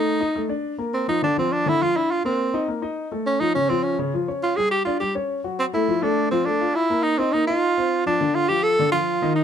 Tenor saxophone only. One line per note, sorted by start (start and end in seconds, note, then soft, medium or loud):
0.00 0.50 D#4 medium
0.94 1.07 C4 medium
1.09 1.22 D#4 medium
1.24 1.37 D4 medium
1.39 1.54 C4 medium
1.53 1.70 D4 medium
1.68 1.84 E4 loud
1.83 1.98 F4 medium
1.97 2.13 E4 medium
2.11 2.25 F4 medium
2.26 2.79 C4 medium
3.27 3.42 C#4 medium
3.40 3.54 D#4 medium
3.55 3.71 C#4 medium
3.69 3.85 C4 medium
3.84 3.99 C#4 medium
4.43 4.58 F4 medium
4.57 4.71 G#4 loud
4.71 4.85 G4 medium
4.85 5.00 F4 medium
5.00 5.14 G4 medium
5.60 5.66 C4 medium
5.74 6.04 E4 medium
6.03 6.31 D4 medium
6.31 6.47 C4 medium
6.46 6.77 D4 medium
6.75 7.05 E4 medium
7.03 7.20 D#4 medium
7.18 7.34 C4 medium
7.33 7.47 D#4 medium
7.47 8.02 F4 medium
8.07 8.36 D4 medium
8.35 8.50 F4 medium
8.48 8.65 G4 loud
8.63 8.91 A4 loud
8.92 9.33 F4 medium
9.36 9.44 D#4 medium